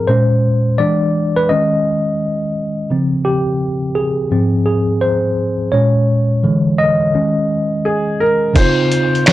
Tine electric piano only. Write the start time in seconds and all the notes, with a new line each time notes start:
Already playing: F3 C4 G#4 A#4
0.08 A#2 G#3 C#4 C5
0.78 E3 G#3 D4 D5
1.36 B4
1.49 D#3 G#3 C#4 D#5
2.90 C#3 F3 C4
3.25 G4
3.95 G#4
4.31 G#2 F3 C4
4.66 G#4
5.01 C5
5.72 A#2 G#3 C#4 C#5
6.43 D3 E3 G#3
6.78 D#5
7.14 D#3 G#3 C#4
8.54 C#3 C4 D#4 F4